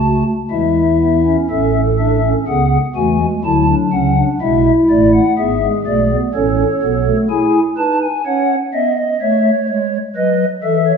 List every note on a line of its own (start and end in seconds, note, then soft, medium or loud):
0.00 0.23 C#2 medium
0.00 0.23 C#3 medium
0.00 0.34 A3 medium
0.00 0.23 F#4 medium
0.00 0.23 A5 medium
0.51 1.36 E2 medium
0.51 1.36 E3 medium
0.51 0.82 G#3 medium
0.51 1.36 E4 medium
0.51 1.36 E5 medium
1.01 1.22 B3 medium
1.26 1.47 C#4 medium
1.50 2.34 A1 medium
1.50 2.34 A2 medium
1.50 1.81 C#4 medium
1.50 2.34 A4 medium
1.50 1.80 E5 medium
1.99 2.20 D4 medium
1.99 2.29 E5 medium
2.23 2.44 C#4 medium
2.47 2.78 C#2 medium
2.47 2.78 C#3 medium
2.47 2.78 B3 medium
2.47 2.78 G#4 medium
2.47 2.78 F#5 medium
2.95 3.25 E2 medium
2.95 3.26 E3 medium
2.95 3.17 A3 medium
2.95 3.26 F#4 medium
2.95 3.26 G#5 medium
3.20 3.41 G#3 medium
3.44 3.74 D2 medium
3.44 3.74 D3 medium
3.44 4.27 F#3 medium
3.44 3.65 E4 medium
3.44 3.74 A5 medium
3.68 3.89 D4 medium
3.92 4.23 C#2 medium
3.92 4.22 C#3 medium
3.92 4.13 C#4 medium
3.92 4.23 F#5 medium
4.17 4.38 D4 medium
4.41 4.72 B1 medium
4.41 4.71 B2 medium
4.41 4.71 G#3 medium
4.41 5.24 E4 medium
4.41 4.72 E5 medium
4.90 5.20 A1 medium
4.90 5.20 A2 medium
4.90 5.20 A3 medium
4.90 5.11 D5 loud
5.14 5.34 F#5 medium
5.38 5.68 G#1 medium
5.38 5.68 G#2 medium
5.38 5.59 B3 medium
5.38 6.20 G#4 medium
5.38 5.68 E5 medium
5.62 5.83 G#3 medium
5.86 6.16 B1 medium
5.86 6.16 B2 medium
5.86 6.07 A3 medium
5.86 6.16 D5 loud
6.10 6.31 B3 medium
6.34 6.64 A1 medium
6.34 6.64 A2 medium
6.34 6.64 C#4 medium
6.34 7.17 A4 medium
6.34 7.17 C#5 medium
6.82 7.12 B1 medium
6.82 7.12 B2 medium
6.82 7.03 B3 medium
7.06 7.27 A3 medium
7.30 7.59 E4 medium
7.30 7.60 G#4 medium
7.30 7.59 G#5 medium
7.77 8.07 D#4 medium
7.77 8.07 B4 loud
7.77 7.98 A5 medium
8.02 8.22 G#5 medium
8.26 8.55 C#4 medium
8.26 8.55 C#5 loud
8.26 8.55 F#5 medium
8.74 9.03 B3 medium
8.74 8.96 D#5 loud
8.74 8.94 E5 medium
8.98 9.18 D#5 medium
9.21 9.51 A3 medium
9.21 9.67 C#5 medium
9.21 9.51 E5 loud
9.69 9.98 G#3 medium
9.69 9.98 C#5 loud
10.16 10.45 F#3 medium
10.16 10.45 B4 loud
10.16 10.45 D#5 medium
10.63 10.92 E3 medium
10.63 10.83 A4 loud
10.63 10.92 E5 medium
10.87 10.97 C#5 medium